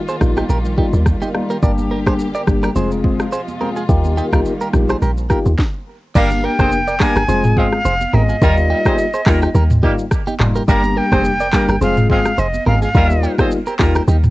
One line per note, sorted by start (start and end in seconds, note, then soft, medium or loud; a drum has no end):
0.00 1.60 D#3 medium
0.00 2.72 G3 medium
0.00 1.60 A#3 medium
0.00 1.59 F4 medium
0.08 0.15 G#4 medium
0.08 0.15 C5 medium
0.08 shaker medium
0.21 0.42 A#1 loud
0.21 0.41 G3 medium
0.21 0.42 A#3 medium
0.21 0.42 D#4 medium
0.21 0.42 F4 medium
0.21 kick medium
0.21 cross-stick medium
0.21 high conga medium
0.21 low conga medium
0.21 shaker soft
0.36 0.44 D#4 medium
0.36 0.43 G4 medium
0.36 cross-stick medium
0.36 high conga medium
0.36 shaker medium
0.49 0.82 A#1 medium
0.49 0.58 G4 medium
0.49 0.57 A#4 medium
0.49 low conga medium
0.49 shaker medium
0.65 shaker soft
0.77 0.98 G3 medium
0.77 0.98 A#3 medium
0.77 0.98 D#4 medium
0.77 0.86 D#4 medium
0.77 0.98 F4 medium
0.77 0.86 G4 medium
0.77 kick medium
0.77 high conga medium
0.93 1.14 D#2 loud
0.93 shaker medium
1.06 kick medium
1.06 cross-stick medium
1.06 shaker medium
1.22 1.29 D#4 medium
1.22 1.28 G4 medium
1.22 high conga medium
1.22 shaker medium
1.34 1.55 G3 medium
1.34 1.55 A#3 medium
1.34 1.55 D#4 medium
1.34 1.55 F4 medium
1.34 cross-stick medium
1.34 high conga medium
1.50 1.57 G4 medium
1.50 1.56 A#4 medium
1.50 shaker soft
1.62 2.31 G1 loud
1.62 2.75 D3 medium
1.62 2.03 G3 medium
1.62 2.75 A#3 medium
1.62 2.03 A#3 medium
1.62 2.03 D4 medium
1.62 2.75 G4 medium
1.62 2.03 G4 loud
1.62 1.71 A#4 medium
1.62 1.70 D5 medium
1.62 kick loud
1.62 low conga medium
1.62 shaker medium
1.78 high conga medium
1.78 shaker soft
1.91 1.99 G4 medium
1.91 1.99 A#4 medium
2.06 2.25 G3 medium
2.06 2.25 A#3 medium
2.06 2.25 D4 medium
2.06 2.25 G4 medium
2.06 2.13 G#4 medium
2.06 2.13 C5 medium
2.06 kick medium
2.06 cross-stick loud
2.06 high conga medium
2.06 shaker soft
2.19 shaker medium
2.35 2.42 A#4 medium
2.35 2.41 D5 medium
2.35 shaker medium
2.47 2.68 G1 medium
2.47 2.68 G3 medium
2.47 2.68 A#3 medium
2.47 2.68 D4 medium
2.47 2.68 G4 medium
2.47 kick loud
2.47 cross-stick loud
2.47 high conga medium
2.47 low conga medium
2.47 shaker soft
2.63 2.70 G4 medium
2.63 2.69 A#4 medium
2.63 cross-stick medium
2.63 high conga medium
2.63 shaker medium
2.75 3.17 F1 loud
2.75 3.88 C3 medium
2.75 3.88 F3 medium
2.75 3.02 G#3 medium
2.75 3.88 G#3 medium
2.75 3.02 C4 medium
2.75 5.56 F4 medium
2.75 3.02 F4 medium
2.75 3.02 G#4 loud
2.75 2.91 G#4 medium
2.75 2.90 C5 medium
2.75 low conga medium
2.75 shaker medium
2.91 shaker soft
3.04 3.24 G#3 medium
3.04 3.24 C4 medium
3.04 3.25 F4 medium
3.04 3.25 G#4 medium
3.04 kick medium
3.04 high conga medium
3.19 cross-stick loud
3.19 shaker medium
3.32 3.41 G#4 medium
3.32 3.40 C5 medium
3.32 shaker medium
3.48 high conga medium
3.48 shaker medium
3.60 3.81 G#3 medium
3.60 3.81 C4 medium
3.60 3.81 F4 medium
3.60 3.69 G4 medium
3.60 3.81 G#4 medium
3.60 3.68 A#4 medium
3.60 high conga medium
3.76 3.83 F4 medium
3.76 3.83 G#4 medium
3.76 shaker soft
3.88 4.21 D#2 loud
3.88 5.57 D#3 medium
3.88 5.57 G3 medium
3.88 4.29 A#3 medium
3.88 5.57 A#3 medium
3.88 4.29 D#4 medium
3.88 4.29 F4 medium
3.88 4.29 G4 loud
3.88 kick loud
3.88 low conga medium
3.88 shaker medium
4.04 high conga medium
4.04 shaker soft
4.17 4.26 D#4 medium
4.17 4.25 G4 medium
4.17 shaker medium
4.32 4.42 C2 medium
4.32 4.52 A#3 medium
4.32 4.52 D#4 medium
4.32 4.52 F4 medium
4.32 4.52 G4 medium
4.32 4.40 G4 soft
4.32 4.39 A#4 medium
4.32 kick medium
4.32 cross-stick loud
4.32 high conga medium
4.32 shaker soft
4.45 shaker medium
4.61 4.68 G4 medium
4.61 4.67 A#4 medium
4.61 shaker medium
4.73 4.95 A#1 loud
4.73 4.94 A#3 medium
4.73 4.94 D#4 medium
4.73 4.94 F4 medium
4.73 4.95 G4 medium
4.73 kick medium
4.73 cross-stick medium
4.73 high conga medium
4.73 low conga medium
4.73 shaker soft
4.89 4.96 G#4 medium
4.89 4.96 C5 medium
4.89 cross-stick medium
4.89 high conga medium
4.89 shaker medium
5.02 5.34 A#1 loud
5.02 5.11 G4 medium
5.02 5.10 A#4 medium
5.02 low conga medium
5.02 shaker medium
5.17 shaker soft
5.30 5.51 A#3 medium
5.30 5.51 D#4 medium
5.30 5.51 F4 medium
5.30 5.51 G4 medium
5.30 5.39 G4 medium
5.30 5.38 A#4 medium
5.30 kick medium
5.30 cross-stick medium
5.30 high conga medium
5.30 shaker soft
5.46 5.55 D#2 loud
5.46 shaker medium
5.59 kick loud
5.59 snare medium
6.15 6.48 G1 loud
6.15 6.28 G3 loud
6.15 6.55 A#3 loud
6.15 6.28 A#3 loud
6.15 6.55 D4 medium
6.15 6.28 D4 loud
6.15 6.56 G4 medium
6.15 6.28 A#4 loud
6.15 6.56 A#4 loud
6.15 6.24 A#4 medium
6.15 6.23 D5 medium
6.15 6.46 F5 loud
6.15 kick loud
6.15 crash loud
6.15 low conga medium
6.15 shaker medium
6.31 high conga medium
6.31 shaker soft
6.44 6.52 G4 medium
6.44 6.52 A#4 medium
6.44 7.03 G5 loud
6.59 7.01 F1 medium
6.59 6.78 A#3 medium
6.59 6.69 C4 medium
6.59 6.78 D4 medium
6.59 6.78 G4 medium
6.59 6.69 G#4 medium
6.59 6.66 G#4 medium
6.59 6.78 A#4 medium
6.59 6.69 C5 loud
6.59 6.66 C5 medium
6.59 kick loud
6.59 cross-stick loud
6.59 high conga medium
6.59 shaker soft
6.72 shaker medium
6.87 6.95 A#4 medium
6.87 6.94 D5 medium
6.87 shaker medium
7.00 7.13 G3 medium
7.00 7.21 A#3 medium
7.00 7.13 A#3 medium
7.00 7.13 D4 medium
7.00 7.21 D4 medium
7.00 7.21 G4 medium
7.00 7.13 A#4 loud
7.00 7.21 A#4 medium
7.00 7.60 G#5 loud
7.00 kick loud
7.00 cross-stick loud
7.00 clap loud
7.00 open hi-hat medium
7.00 high conga medium
7.00 low conga medium
7.00 shaker medium
7.16 7.25 G1 medium
7.16 7.23 G4 medium
7.16 7.22 A#4 medium
7.16 cross-stick loud
7.16 shaker medium
7.28 7.70 F1 loud
7.28 7.55 G#3 loud
7.28 7.55 C4 medium
7.28 7.55 F4 medium
7.28 7.55 G#4 loud
7.28 7.44 G#4 medium
7.28 7.43 C5 medium
7.28 low conga medium
7.28 shaker medium
7.44 mid tom medium
7.44 shaker soft
7.57 7.66 F3 medium
7.57 7.77 G#3 medium
7.57 7.66 G#3 medium
7.57 7.66 C4 medium
7.57 7.77 C4 medium
7.57 7.78 F4 medium
7.57 7.66 G#4 medium
7.57 7.78 G#4 medium
7.57 8.16 F5 loud
7.57 kick loud
7.57 high conga medium
7.72 cross-stick loud
7.72 shaker medium
7.85 8.06 F1 loud
7.85 7.94 G#4 medium
7.85 7.93 C5 medium
7.85 shaker medium
8.01 high conga medium
8.01 shaker medium
8.13 8.34 G#1 loud
8.13 8.34 G#3 medium
8.13 8.34 C4 medium
8.13 8.34 F4 medium
8.13 8.22 G4 medium
8.13 8.34 G#4 medium
8.13 8.21 A#4 medium
8.13 9.84 D#5 loud
8.13 mid tom medium
8.13 high conga medium
8.29 8.36 F4 medium
8.29 8.36 G#4 medium
8.29 shaker medium
8.41 8.74 D#2 loud
8.41 8.82 G3 medium
8.41 8.54 G3 loud
8.41 8.82 A#3 medium
8.41 8.54 A#3 loud
8.41 8.82 D#4 medium
8.41 8.54 F4 loud
8.41 8.82 F4 loud
8.41 8.54 A#4 loud
8.41 kick loud
8.41 low conga medium
8.41 shaker medium
8.57 high conga medium
8.57 shaker soft
8.70 8.79 D#4 medium
8.70 8.78 G4 medium
8.85 9.04 G3 medium
8.85 9.04 A#3 medium
8.85 8.96 C4 medium
8.85 9.05 D#4 medium
8.85 9.05 F4 medium
8.85 8.93 G4 medium
8.85 8.96 G#4 medium
8.85 8.92 A#4 medium
8.85 8.96 C5 loud
8.85 kick loud
8.85 cross-stick loud
8.85 high conga medium
8.85 shaker medium
8.98 shaker medium
9.14 9.21 G#4 medium
9.14 9.20 C5 medium
9.14 shaker medium
9.26 9.48 D#2 medium
9.26 9.47 G3 medium
9.26 9.39 G3 medium
9.26 9.47 A#3 medium
9.26 9.39 A#3 medium
9.26 9.47 D#4 medium
9.26 9.39 F4 medium
9.26 9.47 F4 medium
9.26 9.39 A#4 loud
9.26 kick loud
9.26 cross-stick loud
9.26 clap loud
9.26 open hi-hat medium
9.26 high conga medium
9.26 low conga medium
9.26 shaker medium
9.42 9.49 D#4 medium
9.42 9.49 G4 medium
9.42 cross-stick loud
9.42 shaker medium
9.55 9.87 D#2 loud
9.55 9.64 G4 medium
9.55 9.63 A#4 medium
9.55 low conga medium
9.55 shaker medium
9.70 mid tom medium
9.70 shaker soft
9.83 9.93 D#3 medium
9.83 10.04 G3 medium
9.83 9.93 G3 medium
9.83 10.04 A#3 medium
9.83 9.93 A#3 medium
9.83 10.04 D#4 medium
9.83 9.92 D#4 medium
9.83 10.04 F4 medium
9.83 9.93 G4 medium
9.83 9.91 G4 medium
9.83 kick loud
9.83 high conga medium
9.99 shaker medium
10.11 kick loud
10.11 cross-stick loud
10.11 shaker medium
10.27 10.34 D#4 medium
10.27 10.34 G4 medium
10.27 high conga medium
10.27 shaker medium
10.40 10.61 F1 medium
10.40 10.60 G3 medium
10.40 10.60 A#3 medium
10.40 10.61 D#4 medium
10.40 10.61 F4 medium
10.40 cross-stick loud
10.40 clap loud
10.40 mid tom loud
10.40 high conga medium
10.56 10.63 G4 medium
10.56 10.62 A#4 medium
10.56 shaker medium
10.68 11.01 G1 loud
10.68 11.08 G3 loud
10.68 10.81 G3 loud
10.68 11.08 A#3 medium
10.68 10.81 A#3 loud
10.68 10.81 D4 loud
10.68 11.08 D4 medium
10.68 11.08 G4 loud
10.68 10.81 A#4 loud
10.68 10.77 A#4 medium
10.68 10.76 D5 medium
10.68 10.99 A#5 loud
10.68 kick loud
10.68 low conga medium
10.68 shaker medium
10.84 high conga medium
10.84 shaker soft
10.97 11.05 G4 medium
10.97 11.04 A#4 medium
10.97 11.82 G5 loud
11.12 11.54 F1 medium
11.12 11.31 G3 medium
11.12 11.31 A#3 medium
11.12 11.22 C4 medium
11.12 11.31 D4 medium
11.12 11.31 G4 medium
11.12 11.22 G#4 medium
11.12 11.19 G#4 medium
11.12 11.22 C5 medium
11.12 11.19 C5 medium
11.12 kick loud
11.12 cross-stick loud
11.12 high conga loud
11.12 shaker medium
11.25 shaker medium
11.40 11.47 A#4 medium
11.40 11.47 D5 medium
11.40 shaker medium
11.53 11.74 G3 medium
11.53 11.66 G3 medium
11.53 11.74 A#3 medium
11.53 11.66 A#3 medium
11.53 11.66 D4 medium
11.53 11.74 D4 medium
11.53 11.74 G4 medium
11.53 11.66 A#4 loud
11.53 kick loud
11.53 cross-stick loud
11.53 clap loud
11.53 open hi-hat medium
11.53 high conga medium
11.53 low conga medium
11.53 shaker medium
11.69 11.78 G1 medium
11.69 11.76 G4 medium
11.69 11.75 A#4 medium
11.69 cross-stick loud
11.69 shaker medium
11.81 12.23 F1 loud
11.81 12.08 G#3 medium
11.81 12.08 C4 medium
11.81 12.08 F4 medium
11.81 12.08 G#4 loud
11.81 11.96 G#4 medium
11.81 11.96 C5 medium
11.81 12.08 F5 loud
11.81 low conga medium
11.81 shaker medium
11.97 mid tom medium
11.97 shaker soft
12.09 12.19 F3 medium
12.09 12.30 G#3 medium
12.09 12.19 G#3 medium
12.09 12.30 C4 medium
12.09 12.19 C4 medium
12.09 12.30 F4 medium
12.09 12.19 G#4 loud
12.09 12.30 G#4 medium
12.09 12.41 F5 medium
12.09 kick loud
12.09 high conga medium
12.25 cross-stick loud
12.25 shaker medium
12.38 12.59 F1 loud
12.38 12.46 G#4 medium
12.38 12.46 C5 medium
12.38 12.67 D#5 medium
12.38 shaker medium
12.54 high conga medium
12.54 shaker medium
12.66 12.87 G#1 loud
12.66 12.87 G#3 medium
12.66 12.87 C4 medium
12.66 12.87 F4 medium
12.66 12.75 G4 medium
12.66 12.87 G#4 medium
12.66 12.74 A#4 medium
12.66 12.81 F5 medium
12.66 mid tom loud
12.66 high conga medium
12.82 12.89 F4 medium
12.82 12.88 G#4 medium
12.82 13.35 F5 medium
12.82 shaker medium
12.94 13.27 D#2 loud
12.94 13.35 G3 medium
12.94 13.07 G3 loud
12.94 13.35 A#3 medium
12.94 13.07 A#3 loud
12.94 13.35 D#4 medium
12.94 13.07 F4 loud
12.94 13.35 F4 loud
12.94 13.07 A#4 loud
12.94 kick loud
12.94 low conga medium
12.94 shaker medium
13.10 high conga medium
13.10 shaker medium
13.23 13.31 D#4 medium
13.23 13.31 G4 medium
13.23 shaker medium
13.38 13.57 G3 medium
13.38 13.57 A#3 medium
13.38 13.49 C4 medium
13.38 13.57 D#4 medium
13.38 13.46 D#4 medium
13.38 13.58 F4 medium
13.38 13.45 G4 medium
13.38 13.49 G#4 medium
13.38 13.49 C5 medium
13.38 kick loud
13.38 cross-stick loud
13.38 high conga loud
13.38 shaker soft
13.51 shaker medium
13.67 13.74 G4 medium
13.67 13.73 A#4 medium
13.67 shaker medium
13.79 14.00 D#2 loud
13.79 14.00 G3 medium
13.79 13.92 G3 medium
13.79 13.92 A#3 medium
13.79 14.00 A#3 medium
13.79 14.00 D#4 medium
13.79 13.92 F4 medium
13.79 14.00 F4 medium
13.79 13.92 A#4 loud
13.79 kick loud
13.79 cross-stick medium
13.79 clap loud
13.79 open hi-hat medium
13.79 high conga medium
13.79 low conga medium
13.79 shaker medium
13.95 14.02 G4 medium
13.95 14.02 A#4 medium
13.95 cross-stick loud
13.95 shaker medium
14.08 14.30 D#2 loud
14.08 14.16 D#4 medium
14.08 14.16 G4 medium
14.08 low conga medium
14.08 shaker medium
14.23 mid tom medium
14.23 shaker soft